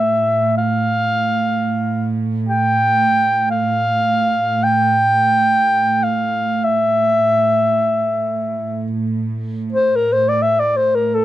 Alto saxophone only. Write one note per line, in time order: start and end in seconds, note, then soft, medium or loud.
0.00 0.57 E5 medium
0.58 2.13 F5 medium
2.49 3.47 G5 medium
3.51 4.65 F5 medium
4.64 6.05 G5 medium
6.04 6.65 F5 medium
6.64 8.85 E5 medium
9.72 9.97 C5 medium
9.96 10.14 A#4 medium
10.13 10.30 C5 medium
10.29 10.44 D5 medium
10.43 10.61 E5 medium
10.59 10.78 D5 medium
10.77 10.97 C5 medium
10.95 11.17 A#4 medium
11.15 11.25 A4 medium